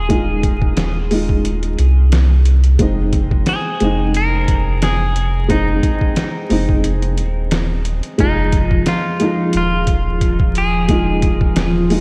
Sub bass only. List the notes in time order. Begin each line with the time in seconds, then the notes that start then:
Already playing: D#1
1.79 C2
2.79 F1
3.81 F1
4.48 F1
6.51 F1
6.69 F1
7.19 D#1
8.19 F1
9.55 D#1